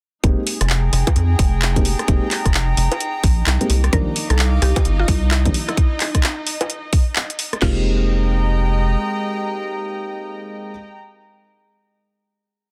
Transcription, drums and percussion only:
0.24 kick, closed hi-hat
0.47 open hi-hat
0.61 cross-stick, closed hi-hat
0.70 clap
0.93 cross-stick, open hi-hat
1.07 kick, closed hi-hat, high bongo
1.16 closed hi-hat
1.39 kick, open hi-hat
1.62 clap
1.76 kick, closed hi-hat
1.85 open hi-hat
1.99 cross-stick, closed hi-hat
2.08 kick, closed hi-hat
2.31 clap, open hi-hat
2.46 kick, cross-stick, closed hi-hat
2.54 clap
2.77 open hi-hat
2.92 closed hi-hat, high bongo
3.00 closed hi-hat
3.24 kick, open hi-hat
3.47 clap
3.61 closed hi-hat
3.70 open hi-hat
3.84 cross-stick, closed hi-hat
3.93 kick, closed hi-hat
4.16 open hi-hat
4.30 cross-stick, closed hi-hat
4.39 clap
4.62 cross-stick, open hi-hat
4.76 kick, closed hi-hat, high bongo
4.85 closed hi-hat
5.08 kick, open hi-hat
5.31 clap
5.45 kick, closed hi-hat
5.54 open hi-hat
5.69 cross-stick, closed hi-hat
5.77 kick, closed hi-hat
6.00 clap, open hi-hat
6.15 kick, cross-stick, closed hi-hat
6.23 clap
6.47 open hi-hat
6.61 closed hi-hat, high bongo
6.70 closed hi-hat
6.93 kick, open hi-hat
7.16 clap
7.30 closed hi-hat
7.39 open hi-hat
7.53 cross-stick, closed hi-hat
7.62 kick, snare, crash

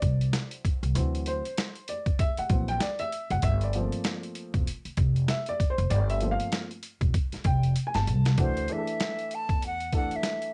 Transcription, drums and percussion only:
0.02 kick, closed hi-hat
0.21 closed hi-hat
0.33 snare, closed hi-hat
0.51 closed hi-hat
0.65 kick, closed hi-hat
0.83 closed hi-hat
0.95 closed hi-hat
1.15 closed hi-hat
1.26 closed hi-hat
1.45 closed hi-hat
1.57 snare, closed hi-hat
1.75 closed hi-hat
1.88 closed hi-hat
2.06 kick, closed hi-hat
2.19 kick, closed hi-hat
2.37 closed hi-hat
2.49 kick, closed hi-hat
2.68 closed hi-hat
2.80 snare, closed hi-hat
2.99 closed hi-hat
3.12 closed hi-hat
3.30 closed hi-hat
3.42 kick, closed hi-hat
3.61 closed hi-hat
3.73 closed hi-hat
3.92 closed hi-hat
4.04 snare, closed hi-hat
4.23 closed hi-hat
4.35 closed hi-hat
4.54 kick, closed hi-hat
4.67 closed hi-hat
4.85 closed hi-hat
4.97 kick, closed hi-hat
5.16 closed hi-hat
5.28 snare, closed hi-hat
5.46 closed hi-hat
5.60 kick, closed hi-hat
5.78 closed hi-hat
5.90 closed hi-hat
6.10 closed hi-hat
6.21 closed hi-hat
6.40 closed hi-hat
6.52 snare, closed hi-hat
6.71 closed hi-hat
6.83 closed hi-hat
7.01 kick, closed hi-hat
7.14 kick, closed hi-hat
7.32 snare, closed hi-hat
7.44 kick, closed hi-hat
7.63 closed hi-hat
7.76 closed hi-hat
7.94 snare, closed hi-hat
8.07 closed hi-hat
8.25 snare, closed hi-hat
8.38 kick, closed hi-hat
8.57 closed hi-hat
8.68 closed hi-hat
8.87 closed hi-hat
9.00 snare, closed hi-hat
9.19 closed hi-hat
9.31 closed hi-hat
9.49 kick, closed hi-hat
9.62 closed hi-hat
9.80 closed hi-hat
9.92 kick, closed hi-hat
10.11 closed hi-hat
10.23 snare, closed hi-hat
10.42 closed hi-hat

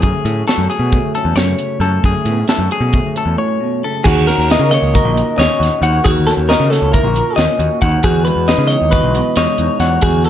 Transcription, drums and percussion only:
0.02 kick, closed hi-hat
0.25 closed hi-hat
0.48 snare, closed hi-hat
0.71 closed hi-hat
0.92 kick, closed hi-hat
1.15 closed hi-hat
1.36 snare, closed hi-hat
1.58 closed hi-hat
1.82 closed hi-hat
2.04 kick, closed hi-hat
2.25 closed hi-hat
2.48 snare, closed hi-hat
2.71 closed hi-hat
2.93 kick, closed hi-hat
3.16 closed hi-hat
4.05 kick, crash
4.28 snare, closed hi-hat
4.50 snare, closed hi-hat
4.72 closed hi-hat
4.95 kick, closed hi-hat
5.17 closed hi-hat
5.40 snare, closed hi-hat
5.63 snare, closed hi-hat
5.83 closed hi-hat
6.06 kick, closed hi-hat
6.28 snare, closed hi-hat
6.50 snare, closed hi-hat
6.73 snare, closed hi-hat
6.94 kick, closed hi-hat
7.16 closed hi-hat
7.38 snare, closed hi-hat
7.60 closed hi-hat
7.82 kick, closed hi-hat
8.03 kick, closed hi-hat
8.26 closed hi-hat
8.48 snare, closed hi-hat
8.70 closed hi-hat
8.92 kick, snare, closed hi-hat
9.15 closed hi-hat
9.36 snare, closed hi-hat
9.58 closed hi-hat
9.80 snare, closed hi-hat
10.01 kick, closed hi-hat
10.24 closed hi-hat

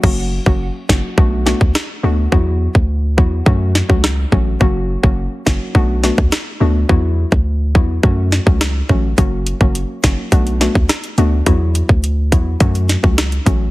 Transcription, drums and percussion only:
0.04 kick, crash
0.46 kick
0.89 kick, snare
1.18 kick
1.46 snare
1.61 kick
1.75 cross-stick, snare
2.32 kick
2.75 kick
3.18 kick
3.46 kick
3.75 snare
3.90 kick
4.04 cross-stick, snare
4.32 kick
4.61 kick
5.04 kick
5.47 kick, snare
5.75 kick
6.04 snare
6.18 kick
6.32 cross-stick, snare
6.89 kick
7.32 kick
7.75 kick
8.03 kick
8.32 snare
8.47 kick
8.61 cross-stick, snare
8.89 kick
9.18 kick, closed hi-hat
9.47 closed hi-hat
9.61 kick
9.75 closed hi-hat
10.04 kick, snare, closed hi-hat
10.32 kick, closed hi-hat
10.47 closed hi-hat
10.61 snare, closed hi-hat
10.75 kick
10.89 cross-stick, snare, closed hi-hat
11.04 closed hi-hat
11.18 closed hi-hat
11.46 kick, closed hi-hat
11.75 closed hi-hat
11.89 kick
12.04 closed hi-hat
12.32 kick, closed hi-hat
12.60 kick, closed hi-hat
12.75 closed hi-hat
12.89 snare, closed hi-hat
13.04 kick
13.18 cross-stick, snare, closed hi-hat
13.32 closed hi-hat
13.46 kick, closed hi-hat

